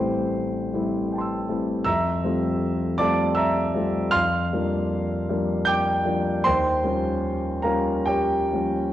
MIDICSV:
0, 0, Header, 1, 2, 480
1, 0, Start_track
1, 0, Key_signature, -1, "major"
1, 0, Tempo, 790514
1, 670, Tempo, 764331
1, 1150, Time_signature, 3, 2, 24, 8
1, 4030, Tempo, 819672
1, 4990, Tempo, 902256
1, 5435, End_track
2, 0, Start_track
2, 0, Title_t, "Grand piano"
2, 0, Program_c, 0, 0
2, 0, Control_c, 0, 64, 127
2, 0, Note_on_c, 0, 33, 49
2, 0, Note_on_c, 0, 55, 39
2, 0, Note_on_c, 0, 57, 37
2, 0, Note_on_c, 0, 60, 37
2, 0, Note_on_c, 0, 64, 41
2, 0, Note_on_c, 0, 72, 61
2, 0, Note_on_c, 0, 79, 56
2, 0, Note_on_c, 0, 84, 70
2, 417, Note_off_c, 0, 55, 0
2, 417, Note_off_c, 0, 60, 0
2, 418, Note_off_c, 0, 57, 0
2, 421, Note_off_c, 0, 64, 0
2, 447, Note_on_c, 0, 55, 40
2, 447, Note_on_c, 0, 57, 42
2, 450, Note_on_c, 0, 60, 40
2, 453, Note_on_c, 0, 64, 46
2, 670, Note_off_c, 0, 79, 0
2, 679, Note_on_c, 0, 79, 33
2, 699, Note_on_c, 0, 81, 34
2, 708, Note_off_c, 0, 84, 0
2, 717, Note_on_c, 0, 84, 35
2, 734, Note_on_c, 0, 88, 37
2, 891, Note_off_c, 0, 55, 0
2, 891, Note_off_c, 0, 57, 0
2, 892, Note_off_c, 0, 60, 0
2, 893, Note_off_c, 0, 72, 0
2, 894, Note_off_c, 0, 64, 0
2, 912, Note_on_c, 0, 55, 39
2, 913, Note_on_c, 0, 57, 43
2, 916, Note_on_c, 0, 60, 39
2, 922, Note_on_c, 0, 64, 42
2, 1125, Note_off_c, 0, 88, 0
2, 1128, Note_off_c, 0, 55, 0
2, 1128, Note_off_c, 0, 57, 0
2, 1130, Note_off_c, 0, 60, 0
2, 1130, Note_off_c, 0, 79, 0
2, 1133, Note_off_c, 0, 64, 0
2, 1134, Note_on_c, 0, 88, 87
2, 1139, Note_off_c, 0, 81, 0
2, 1140, Note_on_c, 0, 82, 72
2, 1143, Note_on_c, 0, 41, 52
2, 1145, Note_on_c, 0, 76, 73
2, 1148, Note_off_c, 0, 84, 0
2, 1162, Control_c, 0, 64, 0
2, 1164, Note_off_c, 0, 33, 0
2, 1261, Control_c, 0, 64, 127
2, 1378, Note_off_c, 0, 41, 0
2, 1385, Note_on_c, 0, 55, 39
2, 1386, Note_on_c, 0, 57, 44
2, 1387, Note_on_c, 0, 60, 44
2, 1393, Note_on_c, 0, 65, 41
2, 1829, Note_off_c, 0, 82, 0
2, 1832, Note_off_c, 0, 55, 0
2, 1832, Note_off_c, 0, 57, 0
2, 1832, Note_off_c, 0, 76, 0
2, 1833, Note_off_c, 0, 60, 0
2, 1836, Note_off_c, 0, 65, 0
2, 1847, Note_on_c, 0, 86, 99
2, 1851, Note_off_c, 0, 88, 0
2, 1853, Note_on_c, 0, 74, 75
2, 1853, Note_on_c, 0, 81, 69
2, 1854, Note_on_c, 0, 55, 43
2, 1854, Note_on_c, 0, 57, 44
2, 1860, Note_on_c, 0, 60, 41
2, 1863, Note_on_c, 0, 65, 47
2, 2078, Note_off_c, 0, 74, 0
2, 2079, Note_off_c, 0, 81, 0
2, 2079, Note_on_c, 0, 88, 87
2, 2088, Note_on_c, 0, 76, 73
2, 2089, Note_on_c, 0, 82, 73
2, 2093, Note_off_c, 0, 86, 0
2, 2312, Note_off_c, 0, 55, 0
2, 2312, Note_off_c, 0, 57, 0
2, 2315, Note_off_c, 0, 60, 0
2, 2316, Note_off_c, 0, 65, 0
2, 2330, Note_on_c, 0, 55, 39
2, 2334, Note_on_c, 0, 57, 43
2, 2343, Note_on_c, 0, 60, 43
2, 2344, Note_on_c, 0, 65, 44
2, 2550, Note_off_c, 0, 76, 0
2, 2550, Note_off_c, 0, 82, 0
2, 2551, Note_off_c, 0, 55, 0
2, 2553, Note_off_c, 0, 57, 0
2, 2558, Note_off_c, 0, 60, 0
2, 2559, Note_off_c, 0, 65, 0
2, 2559, Note_on_c, 0, 89, 102
2, 2561, Note_on_c, 0, 77, 73
2, 2563, Note_on_c, 0, 84, 76
2, 2570, Note_off_c, 0, 88, 0
2, 2570, Note_on_c, 0, 41, 54
2, 2590, Control_c, 0, 64, 0
2, 2678, Control_c, 0, 64, 127
2, 2810, Note_off_c, 0, 41, 0
2, 2823, Note_on_c, 0, 53, 38
2, 2823, Note_on_c, 0, 58, 46
2, 2824, Note_on_c, 0, 55, 37
2, 2825, Note_on_c, 0, 62, 47
2, 3275, Note_off_c, 0, 53, 0
2, 3276, Note_off_c, 0, 55, 0
2, 3276, Note_off_c, 0, 58, 0
2, 3276, Note_off_c, 0, 62, 0
2, 3300, Note_on_c, 0, 53, 39
2, 3300, Note_on_c, 0, 55, 45
2, 3302, Note_on_c, 0, 58, 44
2, 3307, Note_on_c, 0, 62, 42
2, 3505, Note_off_c, 0, 77, 0
2, 3506, Note_off_c, 0, 84, 0
2, 3525, Note_on_c, 0, 91, 94
2, 3529, Note_off_c, 0, 89, 0
2, 3534, Note_on_c, 0, 86, 70
2, 3537, Note_on_c, 0, 79, 75
2, 3758, Note_off_c, 0, 53, 0
2, 3759, Note_off_c, 0, 55, 0
2, 3760, Note_off_c, 0, 58, 0
2, 3762, Note_off_c, 0, 62, 0
2, 3773, Note_on_c, 0, 55, 34
2, 3776, Note_on_c, 0, 53, 40
2, 3776, Note_on_c, 0, 58, 39
2, 3780, Note_on_c, 0, 62, 41
2, 3999, Note_off_c, 0, 55, 0
2, 4001, Note_off_c, 0, 53, 0
2, 4001, Note_off_c, 0, 58, 0
2, 4002, Note_off_c, 0, 86, 0
2, 4003, Note_off_c, 0, 62, 0
2, 4003, Note_off_c, 0, 79, 0
2, 4021, Note_on_c, 0, 84, 100
2, 4022, Note_off_c, 0, 91, 0
2, 4026, Note_on_c, 0, 72, 72
2, 4027, Note_on_c, 0, 79, 68
2, 4033, Note_on_c, 0, 39, 54
2, 4038, Control_c, 0, 64, 0
2, 4115, Control_c, 0, 64, 127
2, 4254, Note_on_c, 0, 55, 41
2, 4255, Note_on_c, 0, 53, 38
2, 4255, Note_on_c, 0, 58, 39
2, 4256, Note_off_c, 0, 39, 0
2, 4261, Note_on_c, 0, 61, 40
2, 4712, Note_off_c, 0, 55, 0
2, 4713, Note_off_c, 0, 53, 0
2, 4713, Note_off_c, 0, 58, 0
2, 4714, Note_off_c, 0, 72, 0
2, 4714, Note_on_c, 0, 82, 70
2, 4715, Note_off_c, 0, 79, 0
2, 4716, Note_off_c, 0, 61, 0
2, 4719, Note_on_c, 0, 77, 53
2, 4720, Note_on_c, 0, 70, 54
2, 4727, Note_on_c, 0, 53, 37
2, 4729, Note_on_c, 0, 55, 38
2, 4731, Note_on_c, 0, 61, 43
2, 4732, Note_on_c, 0, 58, 42
2, 4735, Note_off_c, 0, 84, 0
2, 4961, Note_off_c, 0, 77, 0
2, 4962, Note_off_c, 0, 70, 0
2, 4968, Note_on_c, 0, 79, 84
2, 4975, Note_on_c, 0, 67, 58
2, 4977, Note_off_c, 0, 82, 0
2, 4980, Note_on_c, 0, 73, 53
2, 5199, Note_off_c, 0, 53, 0
2, 5200, Note_off_c, 0, 55, 0
2, 5201, Note_off_c, 0, 58, 0
2, 5201, Note_off_c, 0, 61, 0
2, 5223, Note_on_c, 0, 53, 32
2, 5224, Note_on_c, 0, 55, 36
2, 5228, Note_on_c, 0, 58, 34
2, 5234, Note_on_c, 0, 61, 35
2, 5435, Note_off_c, 0, 53, 0
2, 5435, Note_off_c, 0, 55, 0
2, 5435, Note_off_c, 0, 58, 0
2, 5435, Note_off_c, 0, 61, 0
2, 5435, Note_off_c, 0, 67, 0
2, 5435, Note_off_c, 0, 73, 0
2, 5435, Note_off_c, 0, 79, 0
2, 5435, End_track
0, 0, End_of_file